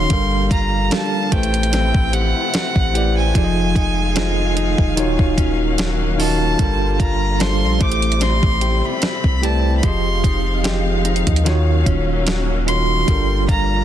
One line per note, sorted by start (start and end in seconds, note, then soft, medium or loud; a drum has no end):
0.00 0.13 D#3 loud
0.00 0.19 D#3 medium
0.00 0.10 F#3 medium
0.00 1.29 A#3 medium
0.00 0.19 C#4 medium
0.00 0.12 D#4 medium
0.00 0.13 F#4 medium
0.00 0.12 C#5 medium
0.00 0.12 F5 loud
0.00 1.28 F5 medium
0.00 0.47 C6 loud
0.09 0.49 G1 loud
0.09 1.31 D3 medium
0.09 3.31 F3 medium
0.09 0.78 G3 medium
0.09 1.31 G3 medium
0.09 1.32 G3 medium
0.09 0.79 D4 medium
0.09 0.79 A4 medium
0.09 0.79 A#4 medium
0.09 0.80 F5 medium
0.09 kick loud
0.09 closed hi-hat medium
0.51 0.90 G1 loud
0.51 1.41 F4 medium
0.51 0.93 A#5 loud
0.51 kick loud
0.51 closed hi-hat medium
0.90 1.31 G3 medium
0.90 1.32 D4 medium
0.90 1.41 A4 medium
0.90 1.32 A4 medium
0.90 1.33 A#4 medium
0.90 1.33 F5 medium
0.90 1.34 A5 loud
0.90 snare loud
0.90 closed hi-hat medium
1.31 1.92 A1 loud
1.31 3.33 C3 medium
1.31 2.66 A3 medium
1.31 4.93 A3 medium
1.31 3.43 A3 medium
1.31 3.33 C4 medium
1.31 2.67 E4 medium
1.31 3.33 E4 medium
1.31 2.67 G4 medium
1.31 2.68 B4 medium
1.31 2.68 C5 medium
1.31 2.15 G5 loud
1.31 kick loud
1.31 closed hi-hat medium
1.43 closed hi-hat medium
1.54 closed hi-hat medium
1.63 closed hi-hat medium
1.73 2.53 C4 medium
1.73 snare medium
1.73 closed hi-hat medium
1.95 2.34 A1 loud
1.95 kick medium
2.13 2.94 G4 medium
2.13 3.16 F#5 loud
2.13 closed hi-hat medium
2.54 3.44 C4 medium
2.54 snare loud
2.54 closed hi-hat medium
2.76 3.33 A1 loud
2.76 kick loud
2.94 3.28 A3 medium
2.94 3.29 E4 medium
2.94 3.44 G4 medium
2.94 3.29 G4 medium
2.94 3.29 B4 medium
2.94 3.30 D5 medium
2.94 closed hi-hat medium
3.17 5.56 G#5 medium
3.34 3.74 F1 loud
3.34 6.56 D#3 medium
3.34 4.03 F3 medium
3.34 4.97 F3 medium
3.34 4.96 G#3 medium
3.34 4.95 C4 medium
3.34 4.03 D#4 medium
3.34 4.03 F4 medium
3.34 4.04 G#4 medium
3.34 3.43 D5 medium
3.34 6.56 F5 medium
3.34 kick loud
3.34 closed hi-hat medium
3.44 4.08 D#5 medium
3.76 4.75 F1 loud
3.76 4.56 D#4 medium
3.76 kick medium
3.76 closed hi-hat medium
4.15 4.97 F3 medium
4.15 4.96 D#4 medium
4.15 4.96 F4 medium
4.15 4.98 G#4 medium
4.15 4.98 D#5 loud
4.15 snare loud
4.15 closed hi-hat medium
4.56 5.06 D#4 medium
4.56 closed hi-hat medium
4.78 5.17 D#1 loud
4.78 kick medium
4.96 5.98 D#3 medium
4.96 6.68 D#3 medium
4.96 6.57 F#3 medium
4.96 7.78 A#3 medium
4.96 6.57 C#4 medium
4.96 5.99 D#4 medium
4.96 5.99 F4 medium
4.96 6.00 F#4 medium
4.96 6.00 C#5 loud
4.96 closed hi-hat medium
5.19 6.55 D#1 loud
5.19 kick medium
5.38 6.17 C#4 medium
5.38 kick medium
5.38 closed hi-hat medium
5.78 6.59 F#3 medium
5.78 snare loud
5.78 closed hi-hat medium
6.18 6.52 D#3 medium
6.18 6.68 C#4 medium
6.18 6.53 D#4 medium
6.18 6.53 F4 medium
6.18 6.53 F#4 medium
6.18 6.54 D#5 medium
6.18 6.94 A5 medium
6.18 open hi-hat medium
6.58 6.98 G1 loud
6.58 7.80 D3 medium
6.58 9.80 F3 medium
6.58 7.27 G3 medium
6.58 7.80 G3 medium
6.58 9.80 G3 medium
6.58 7.27 D4 medium
6.58 7.80 F4 medium
6.58 7.27 F4 medium
6.58 7.28 A4 medium
6.58 7.29 A#4 medium
6.58 kick loud
6.58 closed hi-hat medium
6.94 7.02 A5 medium
7.00 7.64 G1 loud
7.00 7.90 F4 medium
7.00 7.42 A#5 loud
7.00 kick medium
7.00 closed hi-hat medium
7.39 7.80 G3 medium
7.39 7.81 D4 medium
7.39 7.81 F4 medium
7.39 7.89 A4 medium
7.39 7.81 A4 medium
7.39 7.82 C5 medium
7.39 7.83 C6 loud
7.39 snare loud
7.39 closed hi-hat medium
7.63 7.80 A#1 loud
7.79 8.41 A1 loud
7.79 9.81 C3 medium
7.79 9.15 A3 medium
7.79 9.92 A3 medium
7.79 9.81 C4 medium
7.79 9.15 E4 medium
7.79 9.81 E4 medium
7.79 9.16 G4 medium
7.79 9.16 A4 medium
7.79 9.17 C5 medium
7.79 8.24 D6 loud
7.79 kick loud
7.79 closed hi-hat medium
7.92 closed hi-hat medium
8.02 closed hi-hat medium
8.12 closed hi-hat medium
8.21 9.02 C4 medium
8.21 8.86 C6 loud
8.21 snare medium
8.21 closed hi-hat medium
8.43 8.82 A1 loud
8.43 kick medium
8.61 9.42 G4 medium
8.61 closed hi-hat medium
8.85 9.46 B5 loud
9.02 9.92 C4 medium
9.02 snare loud
9.02 closed hi-hat medium
9.24 9.81 C2 loud
9.24 kick loud
9.42 9.76 A3 medium
9.42 9.77 E4 medium
9.42 9.92 G4 medium
9.42 9.77 G4 medium
9.42 9.78 B4 medium
9.42 9.78 D5 medium
9.42 9.77 A5 medium
9.42 closed hi-hat medium
9.77 9.86 B5 medium
9.82 10.22 F1 loud
9.82 13.05 D#3 medium
9.82 10.51 F3 medium
9.82 11.44 F3 medium
9.82 11.45 F3 medium
9.82 11.44 G#3 medium
9.82 11.44 C4 medium
9.82 10.51 F4 medium
9.82 10.52 G4 medium
9.82 10.52 G#4 medium
9.82 10.53 D#5 medium
9.82 13.04 F5 medium
9.82 10.65 C6 medium
9.82 kick loud
9.82 closed hi-hat medium
10.23 11.23 F1 loud
10.23 11.04 D#4 medium
10.23 kick loud
10.23 closed hi-hat medium
10.63 11.45 F3 medium
10.63 11.44 F4 medium
10.63 11.54 G4 medium
10.63 11.46 G4 medium
10.63 11.46 G#4 medium
10.63 11.47 D#5 medium
10.63 snare loud
10.63 closed hi-hat medium
11.05 11.54 D#4 medium
11.05 closed hi-hat medium
11.16 closed hi-hat medium
11.27 11.84 D#2 loud
11.27 kick medium
11.27 closed hi-hat medium
11.36 closed hi-hat medium
11.44 12.47 D#3 loud
11.44 13.16 D#3 medium
11.44 13.06 F#3 medium
11.44 13.06 A#3 medium
11.44 13.06 C#4 medium
11.44 12.47 D#4 medium
11.44 12.48 F4 medium
11.44 12.48 F#4 medium
11.44 12.48 C#5 loud
11.44 snare medium
11.44 closed hi-hat medium
11.86 13.04 D#1 loud
11.86 12.66 C#4 medium
11.86 kick medium
11.86 closed hi-hat medium
12.27 13.07 F#3 medium
12.27 snare loud
12.27 closed hi-hat medium
12.66 13.01 D#3 medium
12.66 13.16 C#4 medium
12.66 13.01 D#4 medium
12.66 13.02 F4 medium
12.66 13.02 F#4 medium
12.66 13.03 C#5 medium
12.66 13.45 C6 loud
12.66 closed hi-hat medium
13.06 13.47 G1 loud
13.06 13.84 F3 medium
13.06 13.75 G3 medium
13.06 13.84 G3 medium
13.06 13.84 A#3 medium
13.06 13.76 D4 medium
13.06 13.84 D4 medium
13.06 13.76 F4 medium
13.06 13.77 A4 medium
13.06 13.77 A#4 medium
13.06 kick loud
13.06 closed hi-hat medium
13.49 13.84 G1 loud
13.49 13.84 F4 medium
13.49 13.84 A#5 loud
13.49 kick medium
13.49 closed hi-hat medium